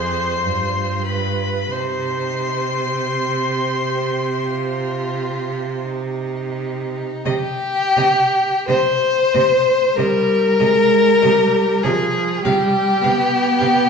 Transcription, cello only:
0.00 0.47 F2 medium
0.45 1.72 G2 medium
1.73 6.99 C3 medium
7.26 7.34 C3 medium
7.97 8.05 C3 medium
8.68 8.76 C3 medium
9.35 9.43 C3 medium
9.98 10.06 C3 medium
10.60 10.68 C3 medium
11.24 11.32 C3 medium
11.85 11.93 C3 medium
12.46 12.54 C3 medium
13.05 13.13 C3 medium
13.61 13.69 C3 medium

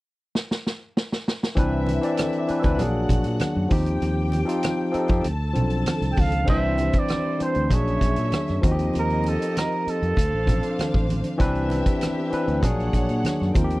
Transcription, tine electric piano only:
1.55 1.87 E3 loud
1.55 1.88 C4 medium
1.55 1.88 D4 medium
1.55 1.89 B4 loud
2.01 2.33 E3 medium
2.01 2.34 C4 medium
2.01 2.34 D4 medium
2.01 2.35 D5 medium
2.47 2.58 E3 medium
2.47 2.59 C4 medium
2.47 2.59 D4 medium
2.47 2.60 B4 medium
2.62 2.78 E3 medium
2.62 2.79 C4 medium
2.62 2.79 D4 medium
2.62 2.80 B4 medium
2.77 3.52 F#3 medium
2.77 3.53 A#3 medium
2.77 3.53 D4 medium
2.77 3.54 G#4 medium
3.69 4.32 F3 medium
3.69 4.32 C4 medium
3.69 4.33 D#4 medium
3.69 4.33 G4 loud
4.45 4.78 F3 medium
4.45 4.78 C4 medium
4.45 4.79 D#4 medium
4.45 4.80 F4 medium
4.91 5.03 F3 medium
4.91 5.04 C4 medium
4.91 5.05 D#4 medium
4.91 5.05 A4 medium
5.07 5.24 F3 medium
5.07 5.24 C4 medium
5.07 5.25 D#4 medium
5.07 5.25 G4 medium
5.53 6.17 F3 medium
5.53 6.17 C4 medium
5.53 6.18 D4 medium
5.53 6.19 A4 medium
6.44 6.53 D3 medium
6.44 7.09 C4 medium
6.44 7.10 D4 medium
6.44 7.11 C5 medium
6.51 7.12 E3 medium
7.38 7.70 E3 medium
7.38 7.71 C4 medium
7.38 7.71 D4 medium
7.43 7.72 C5 medium
7.69 8.44 F#3 medium
7.69 8.44 A#3 medium
7.69 8.45 D4 medium
7.69 8.46 G#4 medium
8.62 9.61 F3 medium
8.62 9.61 C4 medium
8.62 9.62 D#4 medium
8.62 8.71 F#4 medium
8.72 9.66 G4 loud
10.46 11.10 F3 medium
10.46 11.10 C4 medium
10.46 11.11 D4 medium
10.46 11.11 A4 medium
11.38 12.02 E3 loud
11.38 12.02 C4 loud
11.38 12.03 D4 loud
11.38 12.03 B4 loud
12.30 12.62 E3 medium
12.30 12.63 C4 medium
12.30 12.63 D4 medium
12.30 12.64 B4 medium
12.61 13.36 F#3 medium
12.61 13.37 A#3 medium
12.61 13.37 D4 medium
12.61 13.38 G#4 loud
13.54 13.80 F3 medium
13.54 13.80 C4 medium
13.54 13.80 D#4 medium
13.54 13.63 F4 medium
13.64 13.80 G4 loud

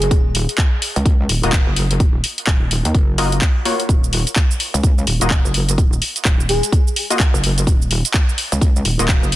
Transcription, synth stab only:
1.43 1.55 A#3 medium
1.43 1.55 F4 medium
1.43 1.55 F#4 medium
1.43 1.55 D#5 medium
3.18 3.28 A#3 medium
3.18 3.28 F4 medium
3.18 3.28 F#4 medium
3.18 3.28 D#5 loud
3.65 5.05 A#3 medium
3.65 5.05 F4 medium
3.65 5.05 F#4 medium
3.65 5.05 C#5 medium
5.21 5.33 A#3 medium
5.21 5.33 F4 medium
5.21 5.33 F#4 medium
5.21 5.33 D#5 medium
7.10 7.22 A#3 medium
7.10 7.22 F4 medium
7.10 7.21 F#4 medium
7.10 7.22 D#5 medium
8.99 9.10 A#3 medium
8.99 9.10 F4 medium
8.99 9.11 F#4 medium
8.99 9.10 D#5 medium

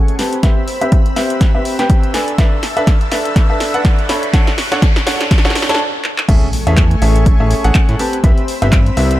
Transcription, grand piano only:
0.00 0.16 C#4 medium
0.00 0.16 G#4 medium
0.00 0.16 A4 medium
0.00 0.16 F#5 medium
0.19 0.36 C4 medium
0.19 0.36 G4 medium
0.19 0.36 B4 medium
0.19 0.36 A5 medium
0.43 0.60 C4 medium
0.43 0.60 G4 medium
0.43 0.60 B4 medium
0.43 0.60 E5 medium
0.81 0.96 C4 medium
0.81 0.96 G4 medium
0.81 0.96 B4 medium
0.81 0.96 E5 loud
1.16 1.51 C4 medium
1.16 1.51 G4 medium
1.16 1.51 B4 medium
1.16 1.51 E5 medium
1.55 1.76 C4 medium
1.55 1.76 G4 medium
1.55 1.76 B4 medium
1.55 1.76 E5 medium
1.79 2.11 C4 medium
1.79 2.11 G4 medium
1.79 2.11 B4 medium
1.79 2.11 G5 medium
2.14 2.31 D4 medium
2.14 2.31 A4 medium
2.14 2.31 B4 medium
2.14 2.31 G#5 medium
2.38 2.55 D4 medium
2.38 2.55 A4 medium
2.38 2.55 B4 medium
2.38 2.55 E5 loud
2.77 2.91 D4 loud
2.77 2.91 A4 medium
2.77 2.91 B4 medium
2.77 2.91 E5 loud
3.12 3.46 D4 medium
3.12 3.46 A4 medium
3.12 3.46 B4 medium
3.12 3.46 E5 medium
3.50 3.71 D4 medium
3.50 3.71 A4 medium
3.50 3.71 B4 medium
3.50 3.71 E5 medium
3.74 4.07 D4 medium
3.74 4.07 A4 medium
3.74 4.07 B4 medium
3.74 4.07 F#5 medium
4.09 4.26 D4 medium
4.09 4.26 A4 medium
4.09 4.26 C#5 medium
4.09 4.26 B5 medium
4.33 4.50 D4 medium
4.33 4.50 A4 medium
4.33 4.50 C#5 medium
4.33 4.50 F#5 loud
4.72 4.86 D4 loud
4.72 4.86 A4 medium
4.72 4.86 C#5 medium
4.72 4.86 F#5 loud
5.07 5.42 D4 medium
5.07 5.42 A4 medium
5.07 5.42 C#5 medium
5.07 5.42 F#5 medium
5.45 5.66 D4 medium
5.45 5.66 A4 medium
5.45 5.66 C#5 medium
5.45 5.66 F#5 medium
5.69 5.80 D4 medium
5.69 5.80 A4 medium
5.69 5.80 C#5 medium
5.69 5.80 A5 loud
6.29 6.45 C#4 medium
6.29 6.45 G#4 medium
6.29 6.45 A4 medium
6.29 6.45 E5 medium
6.67 6.81 C#4 medium
6.67 6.81 G#4 medium
6.67 6.81 A4 medium
6.67 6.81 E5 loud
7.02 7.37 C#4 medium
7.02 7.37 G#4 medium
7.02 7.37 A4 medium
7.02 7.37 E5 medium
7.40 7.61 C#4 medium
7.40 7.61 G#4 medium
7.40 7.61 A4 medium
7.40 7.61 E5 medium
7.64 7.97 C#4 medium
7.64 7.97 G#4 medium
7.64 7.97 A4 medium
7.64 7.97 F#5 loud
7.99 8.16 C4 medium
7.99 8.16 G4 medium
7.99 8.16 B4 medium
7.99 8.16 A5 loud
8.24 8.40 C4 medium
8.24 8.40 G4 medium
8.24 8.40 B4 medium
8.24 8.40 E5 loud
8.62 8.76 C4 medium
8.62 8.76 G4 medium
8.62 8.76 B4 medium
8.62 8.76 E5 loud
8.97 9.20 C4 medium
8.97 9.20 G4 medium
8.97 9.20 B4 medium
8.97 9.20 E5 medium

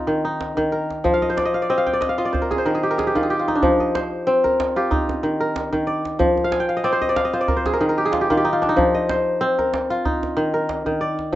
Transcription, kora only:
0.00 0.91 C4 medium
0.00 0.24 D#4 medium
0.00 1.12 F4 medium
0.00 0.65 G#4 medium
0.07 0.56 D#3 medium
0.25 1.43 D#4 medium
0.57 1.10 D#3 medium
0.72 1.99 A#4 medium
1.04 2.39 F3 medium
1.14 1.54 F5 medium
1.22 1.43 D#5 medium
1.30 2.32 C5 medium
1.37 1.61 D5 medium
1.45 1.68 D#5 medium
1.54 1.77 F5 medium
1.62 1.93 D5 medium
1.70 3.50 C4 medium
1.70 1.99 D#5 medium
1.78 2.09 F5 medium
1.86 2.57 G5 medium
1.93 2.24 D5 medium
2.01 2.18 D#5 medium
2.09 3.09 F5 medium
2.18 3.15 F4 medium
2.18 3.25 D#5 medium
2.25 2.72 D5 medium
2.33 2.58 C5 medium
2.42 2.65 A#4 medium
2.51 2.74 G#4 medium
2.58 3.77 C5 medium
2.66 3.14 D#3 medium
2.66 2.90 A#4 medium
2.75 2.98 G#4 medium
2.83 3.04 G4 medium
2.91 4.18 A#4 medium
2.98 3.22 G#4 medium
3.07 3.29 G4 medium
3.15 3.68 D#3 medium
3.15 3.39 F4 medium
3.23 4.59 G#4 medium
3.30 4.71 G4 medium
3.39 4.76 F4 medium
3.48 4.90 D#4 medium
3.55 3.86 D4 medium
3.62 4.96 F3 medium
3.80 4.87 D#5 medium
3.95 5.14 C5 medium
4.27 6.07 C4 medium
4.44 5.40 A#4 medium
4.76 6.28 F4 medium
4.76 6.18 G4 medium
4.91 5.93 D#4 medium
5.23 5.71 D#3 medium
5.40 6.68 A#4 medium
5.73 6.25 D#3 medium
5.87 6.83 D5 medium
6.19 7.53 F3 medium
6.44 6.68 F5 medium
6.52 7.42 G#5 medium
6.60 7.53 G5 medium
6.69 7.16 F5 medium
6.77 7.01 D#5 medium
6.84 8.64 C4 medium
6.84 7.08 D5 medium
6.92 7.33 C5 medium
7.02 7.24 D#5 medium
7.09 7.31 D5 medium
7.16 8.16 F5 medium
7.25 7.47 D#5 medium
7.33 8.12 F4 medium
7.33 7.56 C5 medium
7.41 7.87 D5 medium
7.48 7.73 A#4 medium
7.57 8.75 C5 medium
7.66 7.80 G#4 medium
7.73 7.89 A#4 medium
7.81 8.29 D#3 medium
7.81 8.04 G#4 medium
7.89 9.16 A#4 medium
7.98 8.21 G4 medium
8.05 8.27 G#4 medium
8.12 8.30 F4 medium
8.21 8.37 G4 medium
8.30 8.81 D#3 medium
8.30 8.52 F4 medium
8.37 9.78 G4 medium
8.45 8.68 D#4 medium
8.53 9.90 F4 medium
8.62 9.00 D4 medium
8.69 10.05 D#4 medium
8.76 10.09 F3 medium
8.94 10.01 D#5 medium
9.09 10.28 C5 medium
9.41 11.21 C4 medium
9.59 10.53 A#4 medium
9.90 11.35 F4 medium
10.05 11.07 D#4 medium
10.37 10.85 D#3 medium
10.54 11.35 A#4 medium
10.86 11.35 D#3 medium
11.01 11.35 D5 medium

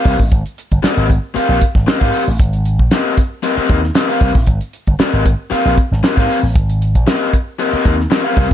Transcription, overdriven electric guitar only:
0.00 0.15 C4 medium
0.00 0.14 G4 medium
0.00 0.14 A#4 medium
0.00 0.14 F5 medium
0.83 1.05 C4 medium
0.83 1.05 G4 medium
0.83 1.05 A#4 medium
0.83 1.05 D#5 loud
1.34 1.56 C4 medium
1.34 1.57 G4 medium
1.34 1.57 A#4 medium
1.34 1.57 F5 medium
1.87 2.00 C4 medium
1.87 2.00 G4 medium
1.87 1.99 A#4 medium
1.87 2.00 D#5 medium
2.00 2.22 C4 medium
2.00 2.22 G4 medium
2.00 2.22 A#4 medium
2.00 2.22 F5 medium
2.91 3.13 C4 medium
2.91 3.13 G4 medium
2.91 3.13 A#4 medium
2.91 3.13 D#5 medium
3.43 3.57 C4 medium
3.43 3.56 G4 medium
3.43 3.56 A#4 medium
3.43 3.55 D#5 medium
3.56 3.78 C4 medium
3.56 3.78 G4 medium
3.56 3.78 A#4 medium
3.56 3.78 D#5 medium
3.95 4.09 C4 medium
3.95 4.09 G4 medium
3.95 4.08 A#4 medium
3.95 4.09 D#5 medium
4.09 4.30 C4 medium
4.09 4.30 G4 medium
4.09 4.30 A#4 medium
4.09 4.30 F5 medium
4.99 5.21 C4 medium
4.99 5.21 G4 loud
4.99 5.21 A#4 loud
4.99 5.21 D#5 loud
5.50 5.72 C4 medium
5.50 5.72 G4 medium
5.50 5.73 A#4 medium
5.50 5.73 F5 medium
6.03 6.16 C4 medium
6.03 6.16 G4 medium
6.03 6.15 A#4 medium
6.03 6.16 D#5 medium
6.16 6.38 C4 medium
6.16 6.38 G4 medium
6.16 6.38 A#4 medium
6.16 6.37 F5 medium
7.07 7.28 C4 medium
7.07 7.28 G4 medium
7.07 7.29 A#4 medium
7.07 7.29 D#5 loud
7.59 7.73 C4 medium
7.59 7.72 G4 medium
7.59 7.72 A#4 medium
7.59 7.71 D#5 medium
7.72 7.94 C4 medium
7.72 7.94 G4 medium
7.72 7.94 A#4 medium
7.72 7.93 D#5 medium
8.10 8.25 C4 medium
8.10 8.24 G4 medium
8.10 8.24 A#4 medium
8.10 8.24 D#5 medium
8.24 8.46 C4 medium
8.24 8.46 G4 medium
8.24 8.46 A#4 medium
8.24 8.45 F5 medium

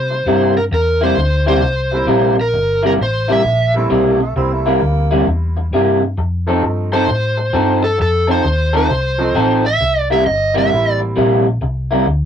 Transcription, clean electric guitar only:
0.11 muted clean electric guitar stroke soft
0.27 0.56 C3 medium
0.27 0.56 G3 medium
0.27 0.55 A#3 medium
0.27 0.55 E4 medium
0.56 muted clean electric guitar stroke soft
0.72 muted clean electric guitar stroke soft
1.01 1.16 C3 medium
1.01 1.17 G3 medium
1.01 1.17 A#3 medium
1.01 1.17 E4 medium
1.17 muted clean electric guitar stroke soft
1.46 1.61 C3 medium
1.46 1.61 G3 medium
1.46 1.62 A#3 medium
1.46 1.62 E4 loud
1.62 muted clean electric guitar stroke soft
1.91 muted clean electric guitar stroke soft
2.07 2.37 C3 medium
2.07 2.37 G3 medium
2.07 2.36 A#3 medium
2.07 2.36 E4 medium
2.37 muted clean electric guitar stroke soft
2.54 muted clean electric guitar stroke soft
2.83 2.98 C3 medium
2.83 2.98 G3 medium
2.83 2.98 A#3 medium
2.83 2.99 E4 medium
2.99 muted clean electric guitar stroke soft
3.28 3.42 C3 medium
3.28 3.42 G3 medium
3.28 3.42 A#3 medium
3.28 3.43 E4 medium
3.43 muted clean electric guitar stroke soft
3.74 muted clean electric guitar stroke medium
3.90 4.20 C3 medium
3.90 4.19 G3 medium
3.90 4.19 A#3 medium
3.90 4.19 E4 medium
4.20 muted clean electric guitar stroke soft
4.36 muted clean electric guitar stroke soft
4.66 4.81 C3 medium
4.66 4.81 G3 medium
4.66 4.81 A#3 medium
4.66 4.82 E4 medium
4.82 muted clean electric guitar stroke soft
5.11 5.26 C3 medium
5.11 5.26 G3 medium
5.11 5.27 A#3 medium
5.11 5.27 E4 medium
5.27 muted clean electric guitar stroke soft
5.57 muted clean electric guitar stroke soft
5.73 6.02 C3 medium
5.73 6.02 G3 medium
5.73 6.01 A#3 medium
5.73 6.01 E4 medium
6.02 muted clean electric guitar stroke soft
6.18 muted clean electric guitar stroke soft
6.47 6.62 F3 medium
6.47 6.62 C4 medium
6.47 6.63 D#4 medium
6.47 6.63 A4 medium
6.63 muted clean electric guitar stroke soft
6.92 7.07 F3 medium
6.92 7.07 C4 medium
6.92 7.08 D#4 medium
6.92 7.08 A4 loud
7.08 muted clean electric guitar stroke soft
7.37 muted clean electric guitar stroke soft
7.53 7.83 F3 medium
7.53 7.82 C4 medium
7.53 7.82 D#4 medium
7.53 7.81 A4 medium
7.82 muted clean electric guitar stroke soft
7.98 muted clean electric guitar stroke soft
8.27 8.43 F3 medium
8.27 8.43 C4 medium
8.27 8.43 D#4 medium
8.27 8.43 A4 medium
8.44 muted clean electric guitar stroke soft
8.73 8.88 F3 medium
8.73 8.89 C4 medium
8.73 8.89 D#4 medium
8.73 8.90 A4 medium
8.90 muted clean electric guitar stroke soft
9.19 muted clean electric guitar stroke medium
9.35 9.65 F3 medium
9.35 9.64 C4 medium
9.35 9.64 D#4 medium
9.35 9.64 A4 medium
9.65 muted clean electric guitar stroke soft
9.81 muted clean electric guitar stroke soft
10.10 10.25 C3 medium
10.10 10.25 G3 medium
10.10 10.25 A#3 medium
10.10 10.25 E4 medium
10.26 muted clean electric guitar stroke soft
10.54 10.70 C3 medium
10.54 10.71 G3 medium
10.54 10.71 A#3 medium
10.54 10.71 E4 medium
10.72 muted clean electric guitar stroke soft
11.00 muted clean electric guitar stroke medium
11.16 11.46 C3 medium
11.16 11.46 G3 medium
11.16 11.45 A#3 medium
11.16 11.45 E4 medium
11.46 muted clean electric guitar stroke soft
11.61 muted clean electric guitar stroke soft
11.91 12.06 C3 medium
11.91 12.06 G3 medium
11.91 12.06 A#3 medium
11.91 12.06 E4 medium
12.07 muted clean electric guitar stroke soft

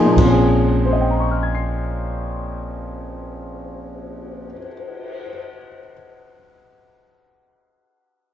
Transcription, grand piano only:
0.00 0.10 F3 medium
0.00 0.17 A#3 medium
0.00 0.17 D#4 medium
0.00 0.18 G#4 medium
0.05 4.46 A#2 medium
0.12 4.52 F3 medium
0.18 4.59 C4 medium
0.25 4.66 C#4 medium
0.30 4.71 G#4 medium
0.85 5.22 C5 medium
0.93 5.29 D#5 soft
1.01 5.38 G5 soft
1.11 5.47 A#5 soft
1.20 5.57 C#6 soft
1.31 5.68 F6 soft
1.43 5.80 G#6 soft
1.55 5.91 C7 soft

